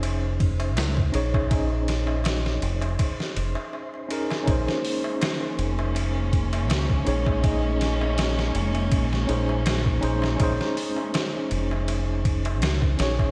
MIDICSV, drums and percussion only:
0, 0, Header, 1, 3, 480
1, 0, Start_track
1, 0, Key_signature, -5, "minor"
1, 0, Tempo, 740741
1, 980, Time_signature, 4, 2, 24, 8
1, 8625, End_track
2, 0, Start_track
2, 0, Title_t, "Darbuka"
2, 19, Note_on_c, 9, 63, 68
2, 83, Note_off_c, 9, 63, 0
2, 151, Note_on_c, 9, 63, 33
2, 215, Note_off_c, 9, 63, 0
2, 387, Note_on_c, 9, 63, 76
2, 451, Note_off_c, 9, 63, 0
2, 497, Note_on_c, 9, 63, 69
2, 562, Note_off_c, 9, 63, 0
2, 628, Note_on_c, 9, 63, 38
2, 692, Note_off_c, 9, 63, 0
2, 871, Note_on_c, 9, 63, 84
2, 936, Note_off_c, 9, 63, 0
2, 980, Note_on_c, 9, 63, 61
2, 1045, Note_off_c, 9, 63, 0
2, 1106, Note_on_c, 9, 63, 35
2, 1170, Note_off_c, 9, 63, 0
2, 1342, Note_on_c, 9, 63, 75
2, 1407, Note_off_c, 9, 63, 0
2, 1452, Note_on_c, 9, 63, 71
2, 1517, Note_off_c, 9, 63, 0
2, 1586, Note_on_c, 9, 63, 36
2, 1651, Note_off_c, 9, 63, 0
2, 1824, Note_on_c, 9, 63, 77
2, 1889, Note_off_c, 9, 63, 0
2, 1936, Note_on_c, 9, 63, 61
2, 2001, Note_off_c, 9, 63, 0
2, 2067, Note_on_c, 9, 63, 33
2, 2131, Note_off_c, 9, 63, 0
2, 2303, Note_on_c, 9, 63, 76
2, 2367, Note_off_c, 9, 63, 0
2, 2419, Note_on_c, 9, 63, 61
2, 2484, Note_off_c, 9, 63, 0
2, 2552, Note_on_c, 9, 63, 39
2, 2617, Note_off_c, 9, 63, 0
2, 2790, Note_on_c, 9, 63, 73
2, 2854, Note_off_c, 9, 63, 0
2, 2903, Note_on_c, 9, 63, 61
2, 2968, Note_off_c, 9, 63, 0
2, 3030, Note_on_c, 9, 63, 36
2, 3094, Note_off_c, 9, 63, 0
2, 3268, Note_on_c, 9, 63, 77
2, 3333, Note_off_c, 9, 63, 0
2, 3379, Note_on_c, 9, 63, 71
2, 3444, Note_off_c, 9, 63, 0
2, 3506, Note_on_c, 9, 63, 39
2, 3571, Note_off_c, 9, 63, 0
2, 3750, Note_on_c, 9, 63, 77
2, 3815, Note_off_c, 9, 63, 0
2, 3855, Note_on_c, 9, 63, 63
2, 3920, Note_off_c, 9, 63, 0
2, 3988, Note_on_c, 9, 63, 34
2, 4052, Note_off_c, 9, 63, 0
2, 4230, Note_on_c, 9, 63, 83
2, 4295, Note_off_c, 9, 63, 0
2, 4339, Note_on_c, 9, 63, 71
2, 4403, Note_off_c, 9, 63, 0
2, 4470, Note_on_c, 9, 63, 37
2, 4535, Note_off_c, 9, 63, 0
2, 4708, Note_on_c, 9, 63, 73
2, 4772, Note_off_c, 9, 63, 0
2, 4817, Note_on_c, 9, 63, 62
2, 4882, Note_off_c, 9, 63, 0
2, 4942, Note_on_c, 9, 63, 36
2, 5007, Note_off_c, 9, 63, 0
2, 5193, Note_on_c, 9, 63, 72
2, 5258, Note_off_c, 9, 63, 0
2, 5305, Note_on_c, 9, 63, 59
2, 5370, Note_off_c, 9, 63, 0
2, 5431, Note_on_c, 9, 63, 37
2, 5496, Note_off_c, 9, 63, 0
2, 5668, Note_on_c, 9, 63, 68
2, 5733, Note_off_c, 9, 63, 0
2, 5780, Note_on_c, 9, 63, 59
2, 5845, Note_off_c, 9, 63, 0
2, 5910, Note_on_c, 9, 63, 33
2, 5975, Note_off_c, 9, 63, 0
2, 6150, Note_on_c, 9, 63, 70
2, 6215, Note_off_c, 9, 63, 0
2, 6257, Note_on_c, 9, 63, 62
2, 6322, Note_off_c, 9, 63, 0
2, 6392, Note_on_c, 9, 63, 34
2, 6457, Note_off_c, 9, 63, 0
2, 6623, Note_on_c, 9, 63, 75
2, 6687, Note_off_c, 9, 63, 0
2, 6736, Note_on_c, 9, 63, 64
2, 6801, Note_off_c, 9, 63, 0
2, 6863, Note_on_c, 9, 63, 34
2, 6928, Note_off_c, 9, 63, 0
2, 7105, Note_on_c, 9, 63, 66
2, 7170, Note_off_c, 9, 63, 0
2, 7220, Note_on_c, 9, 63, 57
2, 7285, Note_off_c, 9, 63, 0
2, 7353, Note_on_c, 9, 63, 39
2, 7418, Note_off_c, 9, 63, 0
2, 7590, Note_on_c, 9, 63, 68
2, 7654, Note_off_c, 9, 63, 0
2, 7699, Note_on_c, 9, 63, 63
2, 7764, Note_off_c, 9, 63, 0
2, 7829, Note_on_c, 9, 63, 31
2, 7894, Note_off_c, 9, 63, 0
2, 8072, Note_on_c, 9, 63, 82
2, 8137, Note_off_c, 9, 63, 0
2, 8181, Note_on_c, 9, 63, 58
2, 8246, Note_off_c, 9, 63, 0
2, 8308, Note_on_c, 9, 63, 34
2, 8373, Note_off_c, 9, 63, 0
2, 8550, Note_on_c, 9, 63, 72
2, 8615, Note_off_c, 9, 63, 0
2, 8625, End_track
3, 0, Start_track
3, 0, Title_t, "Drums"
3, 20, Note_on_c, 9, 51, 79
3, 84, Note_off_c, 9, 51, 0
3, 260, Note_on_c, 9, 36, 90
3, 260, Note_on_c, 9, 51, 65
3, 325, Note_off_c, 9, 36, 0
3, 325, Note_off_c, 9, 51, 0
3, 388, Note_on_c, 9, 51, 43
3, 453, Note_off_c, 9, 51, 0
3, 499, Note_on_c, 9, 51, 85
3, 505, Note_on_c, 9, 38, 112
3, 563, Note_off_c, 9, 51, 0
3, 570, Note_off_c, 9, 38, 0
3, 628, Note_on_c, 9, 36, 89
3, 693, Note_off_c, 9, 36, 0
3, 737, Note_on_c, 9, 51, 63
3, 802, Note_off_c, 9, 51, 0
3, 868, Note_on_c, 9, 36, 85
3, 933, Note_off_c, 9, 36, 0
3, 978, Note_on_c, 9, 51, 83
3, 979, Note_on_c, 9, 36, 103
3, 1043, Note_off_c, 9, 51, 0
3, 1044, Note_off_c, 9, 36, 0
3, 1219, Note_on_c, 9, 51, 63
3, 1225, Note_on_c, 9, 38, 46
3, 1284, Note_off_c, 9, 51, 0
3, 1290, Note_off_c, 9, 38, 0
3, 1458, Note_on_c, 9, 51, 79
3, 1465, Note_on_c, 9, 38, 108
3, 1523, Note_off_c, 9, 51, 0
3, 1529, Note_off_c, 9, 38, 0
3, 1594, Note_on_c, 9, 38, 43
3, 1659, Note_off_c, 9, 38, 0
3, 1699, Note_on_c, 9, 51, 64
3, 1764, Note_off_c, 9, 51, 0
3, 1828, Note_on_c, 9, 51, 39
3, 1892, Note_off_c, 9, 51, 0
3, 1938, Note_on_c, 9, 51, 83
3, 1939, Note_on_c, 9, 36, 98
3, 2003, Note_off_c, 9, 51, 0
3, 2004, Note_off_c, 9, 36, 0
3, 2075, Note_on_c, 9, 38, 41
3, 2140, Note_off_c, 9, 38, 0
3, 2181, Note_on_c, 9, 51, 62
3, 2245, Note_off_c, 9, 51, 0
3, 2660, Note_on_c, 9, 51, 62
3, 2725, Note_off_c, 9, 51, 0
3, 2795, Note_on_c, 9, 38, 48
3, 2859, Note_off_c, 9, 38, 0
3, 2899, Note_on_c, 9, 36, 106
3, 2899, Note_on_c, 9, 51, 82
3, 2964, Note_off_c, 9, 36, 0
3, 2964, Note_off_c, 9, 51, 0
3, 3035, Note_on_c, 9, 38, 48
3, 3100, Note_off_c, 9, 38, 0
3, 3140, Note_on_c, 9, 46, 72
3, 3205, Note_off_c, 9, 46, 0
3, 3380, Note_on_c, 9, 51, 82
3, 3386, Note_on_c, 9, 38, 106
3, 3445, Note_off_c, 9, 51, 0
3, 3451, Note_off_c, 9, 38, 0
3, 3621, Note_on_c, 9, 51, 65
3, 3685, Note_off_c, 9, 51, 0
3, 3862, Note_on_c, 9, 51, 77
3, 3926, Note_off_c, 9, 51, 0
3, 4100, Note_on_c, 9, 36, 84
3, 4101, Note_on_c, 9, 51, 64
3, 4165, Note_off_c, 9, 36, 0
3, 4166, Note_off_c, 9, 51, 0
3, 4230, Note_on_c, 9, 51, 43
3, 4295, Note_off_c, 9, 51, 0
3, 4341, Note_on_c, 9, 51, 80
3, 4347, Note_on_c, 9, 38, 113
3, 4406, Note_off_c, 9, 51, 0
3, 4412, Note_off_c, 9, 38, 0
3, 4469, Note_on_c, 9, 36, 90
3, 4534, Note_off_c, 9, 36, 0
3, 4579, Note_on_c, 9, 51, 66
3, 4644, Note_off_c, 9, 51, 0
3, 4708, Note_on_c, 9, 36, 91
3, 4773, Note_off_c, 9, 36, 0
3, 4820, Note_on_c, 9, 36, 105
3, 4820, Note_on_c, 9, 51, 79
3, 4884, Note_off_c, 9, 36, 0
3, 4884, Note_off_c, 9, 51, 0
3, 5061, Note_on_c, 9, 51, 62
3, 5067, Note_on_c, 9, 38, 45
3, 5126, Note_off_c, 9, 51, 0
3, 5132, Note_off_c, 9, 38, 0
3, 5299, Note_on_c, 9, 51, 81
3, 5306, Note_on_c, 9, 38, 107
3, 5364, Note_off_c, 9, 51, 0
3, 5370, Note_off_c, 9, 38, 0
3, 5435, Note_on_c, 9, 38, 45
3, 5500, Note_off_c, 9, 38, 0
3, 5539, Note_on_c, 9, 51, 66
3, 5604, Note_off_c, 9, 51, 0
3, 5668, Note_on_c, 9, 51, 39
3, 5733, Note_off_c, 9, 51, 0
3, 5778, Note_on_c, 9, 51, 85
3, 5779, Note_on_c, 9, 36, 106
3, 5842, Note_off_c, 9, 51, 0
3, 5843, Note_off_c, 9, 36, 0
3, 5915, Note_on_c, 9, 38, 42
3, 5980, Note_off_c, 9, 38, 0
3, 6019, Note_on_c, 9, 51, 66
3, 6084, Note_off_c, 9, 51, 0
3, 6258, Note_on_c, 9, 51, 89
3, 6264, Note_on_c, 9, 38, 117
3, 6323, Note_off_c, 9, 51, 0
3, 6329, Note_off_c, 9, 38, 0
3, 6387, Note_on_c, 9, 36, 90
3, 6452, Note_off_c, 9, 36, 0
3, 6497, Note_on_c, 9, 51, 65
3, 6562, Note_off_c, 9, 51, 0
3, 6633, Note_on_c, 9, 38, 46
3, 6698, Note_off_c, 9, 38, 0
3, 6737, Note_on_c, 9, 51, 87
3, 6738, Note_on_c, 9, 36, 104
3, 6802, Note_off_c, 9, 51, 0
3, 6803, Note_off_c, 9, 36, 0
3, 6874, Note_on_c, 9, 38, 48
3, 6939, Note_off_c, 9, 38, 0
3, 6979, Note_on_c, 9, 46, 73
3, 7044, Note_off_c, 9, 46, 0
3, 7218, Note_on_c, 9, 51, 78
3, 7225, Note_on_c, 9, 38, 110
3, 7283, Note_off_c, 9, 51, 0
3, 7290, Note_off_c, 9, 38, 0
3, 7458, Note_on_c, 9, 51, 64
3, 7523, Note_off_c, 9, 51, 0
3, 7698, Note_on_c, 9, 51, 90
3, 7763, Note_off_c, 9, 51, 0
3, 7939, Note_on_c, 9, 36, 95
3, 7939, Note_on_c, 9, 51, 67
3, 8003, Note_off_c, 9, 36, 0
3, 8004, Note_off_c, 9, 51, 0
3, 8068, Note_on_c, 9, 51, 43
3, 8133, Note_off_c, 9, 51, 0
3, 8178, Note_on_c, 9, 51, 79
3, 8184, Note_on_c, 9, 38, 118
3, 8243, Note_off_c, 9, 51, 0
3, 8249, Note_off_c, 9, 38, 0
3, 8307, Note_on_c, 9, 36, 92
3, 8372, Note_off_c, 9, 36, 0
3, 8416, Note_on_c, 9, 51, 73
3, 8422, Note_on_c, 9, 38, 102
3, 8481, Note_off_c, 9, 51, 0
3, 8487, Note_off_c, 9, 38, 0
3, 8547, Note_on_c, 9, 36, 80
3, 8612, Note_off_c, 9, 36, 0
3, 8625, End_track
0, 0, End_of_file